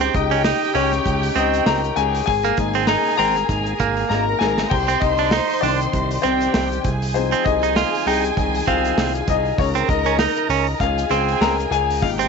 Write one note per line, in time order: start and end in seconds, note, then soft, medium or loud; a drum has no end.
0.00 0.71 G#3 medium
0.00 0.14 C4 medium
0.00 0.14 D#4 medium
0.00 2.24 G4 medium
0.00 2.24 G5 medium
0.00 hi-hat pedal medium
0.14 0.54 C#2 loud
0.14 0.72 D#4 medium
0.14 0.78 D#5 medium
0.14 kick medium
0.14 hi-hat pedal medium
0.14 open hi-hat medium
0.31 0.44 C#4 medium
0.31 open hi-hat medium
0.44 0.74 D#4 medium
0.44 snare loud
0.44 hi-hat pedal medium
0.44 open hi-hat loud
0.62 hi-hat pedal medium
0.62 open hi-hat soft
0.75 1.00 C#2 loud
0.75 1.03 G#3 soft
0.75 0.91 C#4 medium
0.75 1.33 C#4 medium
0.75 1.03 D#4 medium
0.75 1.32 C#5 medium
0.75 hi-hat pedal medium
0.75 open hi-hat medium
0.92 snare soft
0.92 hi-hat pedal medium
0.92 open hi-hat soft
1.06 1.31 C#2 loud
1.06 kick medium
1.06 hi-hat pedal medium
1.06 open hi-hat medium
1.23 hi-hat pedal medium
1.23 open hi-hat soft
1.36 1.61 C#2 loud
1.36 1.81 C4 medium
1.36 1.66 D#4 medium
1.36 1.68 D#5 medium
1.36 hi-hat pedal medium
1.36 open hi-hat medium
1.53 hi-hat pedal medium
1.53 open hi-hat medium
1.66 1.91 C#2 loud
1.66 1.96 A#4 medium
1.66 1.98 A#5 loud
1.66 snare loud
1.66 hi-hat pedal medium
1.66 open hi-hat medium
1.83 hi-hat pedal medium
1.83 open hi-hat soft
1.96 2.22 C#2 loud
1.96 2.26 G#4 medium
1.96 2.24 G#5 loud
1.96 hi-hat pedal medium
1.96 open hi-hat medium
2.14 hi-hat pedal medium
2.14 open hi-hat soft
2.26 2.52 G#1 loud
2.26 2.85 G#4 medium
2.26 4.07 G#4 medium
2.26 2.84 G#5 loud
2.26 4.07 G#5 medium
2.26 kick medium
2.26 hi-hat pedal medium
2.26 open hi-hat medium
2.44 2.57 A#3 medium
2.44 hi-hat pedal medium
2.57 2.97 G#1 loud
2.57 4.08 G#3 medium
2.57 4.08 A#3 medium
2.57 4.09 D#4 medium
2.57 kick medium
2.57 hi-hat pedal medium
2.57 open hi-hat medium
2.74 2.88 C4 medium
2.74 open hi-hat soft
2.87 3.18 D#4 medium
2.87 3.17 A#4 medium
2.87 3.16 A#5 loud
2.87 snare loud
2.87 hi-hat pedal medium
2.87 open hi-hat medium
3.05 hi-hat pedal medium
3.05 open hi-hat soft
3.17 3.44 G#1 medium
3.17 3.35 C4 medium
3.17 4.06 A#4 medium
3.17 4.07 A#5 loud
3.17 hi-hat pedal medium
3.17 open hi-hat medium
3.35 snare soft
3.35 hi-hat pedal medium
3.35 open hi-hat soft
3.49 3.74 G#1 loud
3.49 kick medium
3.49 hi-hat pedal medium
3.49 open hi-hat medium
3.66 hi-hat pedal medium
3.80 4.05 G#1 medium
3.80 4.25 A#3 medium
3.80 kick medium
3.80 hi-hat pedal medium
3.80 open hi-hat medium
3.97 open hi-hat medium
4.09 4.35 G#1 loud
4.09 4.37 G#3 soft
4.09 4.38 A#3 soft
4.09 4.38 D#4 soft
4.09 4.39 A#4 medium
4.09 4.71 A#4 medium
4.09 4.41 A#5 medium
4.09 4.70 A#5 medium
4.09 snare medium
4.39 4.66 G#1 loud
4.39 4.48 G#4 medium
4.39 4.46 G#5 medium
4.39 snare medium
4.58 snare medium
4.70 4.96 C2 loud
4.70 5.00 G4 medium
4.70 6.20 C5 medium
4.70 5.02 G5 medium
4.70 6.20 C6 medium
4.70 kick loud
4.70 crash medium
4.88 5.01 C4 medium
4.88 hi-hat pedal medium
5.00 5.41 C2 loud
5.00 5.59 D#4 medium
5.00 5.64 D#5 medium
5.00 kick medium
5.00 hi-hat pedal medium
5.00 open hi-hat medium
5.18 5.32 D4 medium
5.18 open hi-hat medium
5.31 5.61 D#4 medium
5.31 snare loud
5.31 hi-hat pedal medium
5.31 open hi-hat loud
5.50 hi-hat pedal medium
5.50 open hi-hat soft
5.61 5.87 C2 loud
5.61 6.80 D#3 medium
5.61 6.23 C4 soft
5.61 6.20 D4 medium
5.61 5.79 D4 medium
5.61 6.24 D5 medium
5.61 hi-hat pedal medium
5.61 open hi-hat medium
5.80 hi-hat pedal medium
5.80 open hi-hat soft
5.93 6.18 C2 medium
5.93 kick medium
5.93 hi-hat pedal medium
5.93 open hi-hat loud
6.11 hi-hat pedal medium
6.11 open hi-hat soft
6.22 6.49 C2 medium
6.22 6.68 C4 medium
6.22 6.81 C4 medium
6.22 6.84 G4 medium
6.22 6.80 C5 medium
6.22 6.83 G5 medium
6.22 hi-hat pedal medium
6.22 open hi-hat medium
6.41 hi-hat pedal medium
6.41 open hi-hat medium
6.54 6.79 C2 loud
6.54 snare loud
6.54 hi-hat pedal medium
6.54 open hi-hat medium
6.71 hi-hat pedal medium
6.71 open hi-hat soft
6.84 7.34 C2 loud
6.84 9.55 G#4 medium
6.84 9.55 G#5 medium
6.84 kick medium
6.84 hi-hat pedal medium
6.84 open hi-hat medium
7.02 hi-hat pedal medium
7.02 open hi-hat medium
7.14 9.54 F3 medium
7.14 8.35 G#3 soft
7.14 7.43 C4 medium
7.14 7.44 D#4 medium
7.14 7.46 C5 medium
7.14 hi-hat pedal medium
7.14 open hi-hat medium
7.32 7.45 C4 medium
7.32 hi-hat pedal medium
7.32 open hi-hat soft
7.44 7.84 C2 medium
7.44 8.02 D#4 medium
7.44 8.08 D#5 loud
7.44 kick medium
7.44 hi-hat pedal medium
7.44 open hi-hat medium
7.63 7.75 D#4 medium
7.63 hi-hat pedal medium
7.63 open hi-hat medium
7.76 8.05 F4 medium
7.76 snare loud
7.76 hi-hat pedal medium
7.76 open hi-hat loud
7.94 hi-hat pedal medium
7.94 open hi-hat soft
8.07 8.31 C2 medium
8.07 8.23 D#4 medium
8.07 8.64 G#4 medium
8.07 8.63 G5 loud
8.07 hi-hat pedal medium
8.07 open hi-hat medium
8.24 hi-hat pedal medium
8.24 open hi-hat soft
8.36 8.62 C2 loud
8.36 8.64 D#3 soft
8.36 8.64 G#3 soft
8.36 8.64 D#4 medium
8.36 kick medium
8.36 hi-hat pedal medium
8.36 open hi-hat medium
8.54 hi-hat pedal medium
8.54 open hi-hat soft
8.67 8.92 C2 loud
8.67 9.12 C4 medium
8.67 9.24 F4 medium
8.67 9.30 F5 medium
8.67 kick medium
8.67 hi-hat pedal medium
8.67 open hi-hat medium
8.85 hi-hat pedal medium
8.85 open hi-hat medium
8.97 9.22 C2 loud
8.97 snare loud
8.97 hi-hat pedal medium
8.97 open hi-hat medium
9.14 hi-hat pedal medium
9.28 9.53 C2 medium
9.28 9.57 D#4 medium
9.28 9.60 D#5 medium
9.28 kick medium
9.28 hi-hat pedal medium
9.28 open hi-hat medium
9.45 open hi-hat soft
9.57 9.83 C#2 loud
9.57 10.45 G#3 soft
9.57 9.66 C#4 medium
9.57 9.88 D#4 medium
9.57 10.78 A#4 medium
9.57 9.66 C#5 medium
9.57 10.78 A#5 medium
9.57 kick loud
9.57 hi-hat pedal medium
9.57 open hi-hat medium
9.75 9.88 C4 medium
9.75 hi-hat pedal medium
9.75 open hi-hat soft
9.88 10.28 C#2 loud
9.88 10.77 D#4 medium
9.88 10.77 D#5 loud
9.88 kick loud
9.88 hi-hat pedal medium
9.88 open hi-hat medium
10.05 10.19 C#4 medium
10.05 hi-hat pedal medium
10.05 open hi-hat medium
10.19 10.48 D#4 medium
10.19 snare loud
10.19 hi-hat pedal medium
10.19 open hi-hat loud
10.36 hi-hat pedal medium
10.49 10.74 C#2 loud
10.49 10.66 C#4 medium
10.49 hi-hat pedal medium
10.49 open hi-hat medium
10.67 open hi-hat soft
10.80 11.05 C#2 loud
10.80 11.09 F4 medium
10.80 12.00 G#4 medium
10.80 11.12 F5 medium
10.80 12.00 G#5 medium
10.80 kick medium
10.80 hi-hat pedal medium
10.80 open hi-hat loud
10.98 hi-hat pedal medium
11.10 11.36 C#2 loud
11.10 11.56 C4 medium
11.10 11.39 G#4 medium
11.10 11.39 G5 medium
11.10 hi-hat pedal medium
11.10 open hi-hat medium
11.29 open hi-hat medium
11.41 11.66 C#2 medium
11.41 11.70 A#4 medium
11.41 11.73 A#5 medium
11.41 snare loud
11.41 hi-hat pedal medium
11.41 open hi-hat medium
11.59 hi-hat pedal medium
11.59 open hi-hat soft
11.71 12.04 C#2 loud
11.71 12.00 G#4 medium
11.71 12.00 G#5 loud
11.71 hi-hat pedal medium
11.71 open hi-hat medium
11.90 hi-hat pedal medium
11.90 open hi-hat soft
12.01 12.27 G#1 loud
12.01 12.28 G#3 medium
12.01 12.28 A#3 soft
12.01 12.28 D#4 medium
12.01 12.09 F4 medium
12.01 12.28 G4 medium
12.01 12.09 F5 medium
12.01 12.28 G5 medium
12.01 kick loud
12.01 hi-hat pedal medium
12.01 open hi-hat medium
12.19 12.28 C4 medium
12.19 hi-hat pedal medium
12.19 open hi-hat soft